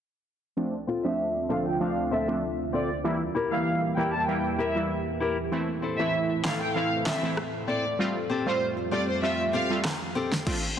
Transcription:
0.57 3.02 D2 medium
0.57 3.02 D3 medium
0.57 0.74 F3 medium
0.57 0.74 A3 medium
0.57 3.02 C4 medium
0.57 0.74 C4 medium
0.57 0.74 D4 loud
0.57 3.02 F4 medium
0.87 1.03 C4 medium
0.87 1.04 F4 medium
0.87 1.04 A4 medium
1.04 1.46 F3 medium
1.04 1.46 A3 medium
1.04 1.46 C4 medium
1.04 1.46 D4 medium
1.04 1.16 E5 medium
1.35 muted nylon-string guitar stroke soft
1.49 1.78 F3 medium
1.49 1.78 A3 medium
1.49 1.65 C4 medium
1.49 1.78 C4 medium
1.49 1.79 D4 medium
1.49 1.65 F4 medium
1.49 1.66 A4 loud
1.49 1.63 F5 medium
1.66 1.78 G5 medium
1.80 2.24 F3 medium
1.80 2.24 A3 medium
1.80 2.24 C4 medium
1.80 2.24 D4 loud
1.80 1.94 F5 medium
2.11 2.27 C4 medium
2.11 2.27 F4 medium
2.11 2.28 A4 medium
2.11 2.25 E5 medium
2.28 2.43 F3 medium
2.28 2.43 A3 medium
2.28 2.43 C4 medium
2.28 2.44 D4 medium
2.73 2.89 C4 medium
2.73 2.89 F4 medium
2.73 2.89 A4 medium
2.73 2.87 D5 medium
3.04 5.49 E2 medium
3.04 7.95 E3 medium
3.04 3.21 E3 medium
3.04 3.22 G3 medium
3.04 5.49 A#3 medium
3.04 3.22 A#3 medium
3.04 3.22 E4 loud
3.04 5.49 G4 medium
3.35 3.50 E4 medium
3.35 3.51 G4 medium
3.35 3.51 A#4 medium
3.51 3.94 E3 medium
3.51 3.94 G3 medium
3.51 3.94 A#3 medium
3.51 3.94 E4 medium
3.51 3.64 F5 medium
3.82 muted nylon-string guitar stroke medium
3.97 4.26 E3 medium
3.97 4.26 G3 medium
3.97 4.26 A#3 medium
3.97 4.12 E4 medium
3.97 4.26 E4 medium
3.97 4.13 G4 medium
3.97 4.13 A#4 medium
3.97 4.11 G5 medium
4.14 4.25 A5 medium
4.28 4.71 E3 medium
4.28 4.71 G3 medium
4.28 4.72 A#3 medium
4.28 4.72 E4 loud
4.28 4.42 G5 medium
4.58 4.74 E4 medium
4.58 4.75 G4 medium
4.58 4.75 A#4 loud
4.58 4.72 E5 medium
4.75 4.91 E3 medium
4.75 4.91 G3 medium
4.75 4.91 A#3 medium
4.75 4.91 E4 medium
5.20 5.36 E4 medium
5.20 5.37 G4 medium
5.20 5.37 A#4 loud
5.52 7.97 A2 medium
5.52 5.69 E3 medium
5.52 5.69 A3 medium
5.52 7.97 C4 medium
5.52 5.69 C4 medium
5.52 5.69 E4 loud
5.52 7.97 A4 medium
5.82 5.98 C4 medium
5.82 5.98 E4 medium
5.82 5.99 A4 medium
5.99 6.41 E3 medium
5.99 6.41 A3 medium
5.99 6.41 C4 medium
5.99 6.41 E4 medium
5.99 6.11 E5 medium
6.30 muted nylon-string guitar stroke medium
6.44 6.73 E3 medium
6.44 6.73 A3 medium
6.44 6.60 C4 medium
6.44 6.73 C4 medium
6.44 6.60 E4 medium
6.44 6.73 E4 medium
6.44 6.61 A4 medium
6.44 6.58 F5 medium
6.44 snare loud
6.44 clap medium
6.61 6.73 G5 medium
6.75 7.19 E3 medium
6.75 7.19 A3 medium
6.75 7.19 C4 medium
6.75 7.19 E4 loud
6.75 6.89 F5 medium
7.06 7.22 C4 medium
7.06 7.22 E4 medium
7.06 7.22 A4 loud
7.06 7.20 E5 medium
7.06 snare loud
7.06 clap loud
7.23 7.38 E3 medium
7.23 7.38 A3 medium
7.23 7.38 C4 medium
7.23 7.38 E4 medium
7.37 cross-stick medium
7.68 7.83 C4 medium
7.68 7.84 E4 loud
7.68 7.84 A4 loud
7.68 7.82 D5 medium
7.99 10.44 F2 medium
7.99 10.44 F3 medium
7.99 8.16 G3 medium
7.99 8.16 A3 medium
7.99 10.44 A3 medium
7.99 8.16 C4 medium
7.99 8.17 F4 loud
7.99 10.44 G4 medium
8.29 8.45 C4 medium
8.29 8.46 G4 medium
8.29 8.46 A4 medium
8.46 8.88 G3 medium
8.46 8.88 A3 medium
8.46 8.89 C4 medium
8.46 8.89 F4 medium
8.46 8.59 C5 medium
8.77 muted nylon-string guitar stroke soft
8.91 9.20 G3 medium
8.91 9.21 A3 medium
8.91 9.07 C4 medium
8.91 9.21 C4 medium
8.91 9.21 F4 medium
8.91 9.08 G4 medium
8.91 9.08 A4 medium
8.91 9.05 D5 medium
9.08 9.20 C5 medium
9.23 9.66 G3 medium
9.23 9.66 A3 medium
9.23 9.66 C4 medium
9.23 9.66 F4 loud
9.23 9.36 E5 medium
9.53 9.69 C4 medium
9.53 9.69 G4 medium
9.53 9.70 A4 medium
9.53 9.67 F5 medium
9.70 9.86 G3 medium
9.70 9.86 A3 medium
9.70 9.86 C4 medium
9.70 9.86 F4 medium
9.85 cross-stick medium
9.85 snare loud
9.85 clap medium
10.15 10.31 C4 medium
10.15 10.31 G4 medium
10.15 10.32 A4 medium
10.32 snare medium
10.46 10.64 A3 medium
10.46 10.64 C4 medium
10.46 10.64 D4 medium
10.46 10.64 F4 loud
10.46 kick loud
10.46 crash medium

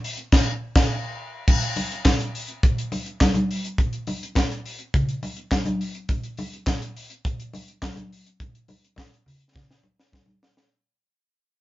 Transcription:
0.04 open hi-hat medium
0.17 closed hi-hat soft
0.32 kick loud
0.32 snare loud
0.32 crash medium
0.75 kick loud
0.75 snare loud
0.75 crash medium
1.48 kick loud
1.48 crash loud
1.48 muted conga soft
1.62 closed hi-hat medium
1.76 open hi-hat medium
1.76 muted conga medium
1.92 closed hi-hat soft
2.05 kick loud
2.05 snare loud
2.05 clap medium
2.05 closed hi-hat medium
2.05 high conga medium
2.20 closed hi-hat medium
2.35 open hi-hat medium
2.48 closed hi-hat soft
2.63 kick loud
2.63 closed hi-hat medium
2.78 closed hi-hat medium
2.92 open hi-hat medium
2.92 muted conga medium
3.06 closed hi-hat soft
3.21 kick loud
3.21 snare loud
3.21 clap medium
3.21 closed hi-hat medium
3.21 high conga medium
3.34 closed hi-hat medium
3.34 high conga medium
3.51 open hi-hat medium
3.65 closed hi-hat medium
3.78 kick loud
3.78 closed hi-hat medium
3.93 closed hi-hat soft
4.07 open hi-hat medium
4.07 muted conga medium
4.23 closed hi-hat medium
4.35 kick loud
4.35 snare loud
4.35 clap medium
4.35 closed hi-hat medium
4.35 high conga medium
4.51 closed hi-hat medium
4.66 open hi-hat medium
4.79 closed hi-hat soft
4.94 kick loud
4.94 closed hi-hat medium
4.94 low conga medium
5.09 closed hi-hat soft
5.23 open hi-hat medium
5.23 muted conga medium
5.37 closed hi-hat medium
5.51 kick medium
5.51 snare medium
5.51 clap medium
5.51 closed hi-hat medium
5.51 high conga medium
5.66 closed hi-hat medium
5.66 high conga medium
5.81 open hi-hat medium
5.95 closed hi-hat medium
6.09 kick medium
6.09 closed hi-hat medium
6.09 muted conga soft
6.24 closed hi-hat soft
6.37 open hi-hat medium
6.37 muted conga medium
6.54 closed hi-hat soft
6.66 kick loud
6.66 snare medium
6.66 clap medium
6.66 closed hi-hat medium
6.66 high conga medium
6.82 closed hi-hat soft
6.97 open hi-hat medium
7.10 closed hi-hat soft
7.25 kick loud
7.25 closed hi-hat medium
7.40 closed hi-hat medium
7.54 open hi-hat medium
7.54 muted conga medium
7.68 closed hi-hat soft
7.82 kick medium
7.82 snare loud
7.82 clap medium
7.82 closed hi-hat medium
7.82 high conga medium
7.95 closed hi-hat soft
7.95 high conga medium
8.13 open hi-hat medium
8.27 closed hi-hat medium
8.40 kick loud
8.40 closed hi-hat medium
8.40 muted conga soft
8.55 closed hi-hat soft
8.68 open hi-hat medium
8.68 muted conga medium
8.84 closed hi-hat medium
8.96 kick loud
8.96 snare medium
8.96 clap medium
8.96 closed hi-hat medium
8.96 high conga medium
9.14 closed hi-hat soft
9.26 open hi-hat medium
9.26 low conga medium
9.40 closed hi-hat soft
9.54 kick loud
9.54 snare medium
9.54 low conga medium
9.71 snare medium
9.83 muted conga medium
10.00 snare medium
10.12 kick loud
10.12 snare medium
10.12 high conga medium
10.26 high conga medium
10.43 snare loud
10.57 snare loud

